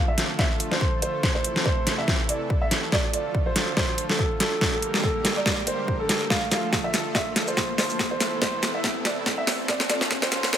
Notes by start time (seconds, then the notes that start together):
Already playing: D3 F3 A3 F4 A4, riser
0.08 E5
0.18 snare, closed hi-hat
0.39 E5, kick, snare
0.60 closed hi-hat
0.71 C5, snare
0.81 kick
1.02 C5, closed hi-hat
1.23 C3 E3 E4, kick, snare
1.35 C5
1.44 closed hi-hat
1.56 snare
1.65 C5, kick
1.87 snare, closed hi-hat
1.98 E5
2.08 kick, snare
2.29 D5, closed hi-hat
2.50 kick
2.61 E5
2.71 snare, closed hi-hat
2.92 D3 F3 A3 F4 D5, kick, snare
3.13 D5, closed hi-hat
3.35 kick
3.46 C5
3.56 snare, closed hi-hat
3.77 C5, kick, snare
3.98 closed hi-hat
4.09 A4, snare
4.19 kick
4.40 A4, snare, closed hi-hat
4.61 D3 G3 A#3 G4 A#4, kick, snare
4.73 A4
4.82 closed hi-hat
4.94 snare
5.04 A4, kick
5.25 snare, closed hi-hat
5.36 D5
5.46 kick, snare
5.67 C5, closed hi-hat
5.88 kick
6.00 A4
6.09 snare, closed hi-hat
6.30 F3 A3 F4 A4 F5, kick, snare
6.51 F5, snare, closed hi-hat, shaker
6.73 kick, snare
6.84 E5
6.94 snare, closed hi-hat, shaker
7.15 E5, kick, snare
7.36 snare, closed hi-hat
7.47 C5, shaker
7.57 kick, snare
7.78 C5, snare, open hi-hat
7.90 shaker
7.99 C3 E3 E4 A4, kick, snare
8.11 C5
8.20 snare, closed hi-hat, shaker
8.42 C5, kick, snare
8.63 snare, closed hi-hat, shaker
8.74 E5
8.84 kick, snare
9.05 D5, snare, closed hi-hat
9.26 kick, snare
9.38 E5
9.47 snare, open hi-hat
9.68 D3 F3 F4 D5, kick, snare
9.80 snare
9.90 D5, snare, closed hi-hat, shaker
10.01 snare
10.11 kick, snare
10.22 C5, snare
10.32 snare, closed hi-hat, shaker
10.43 snare
10.53 C5, kick, snare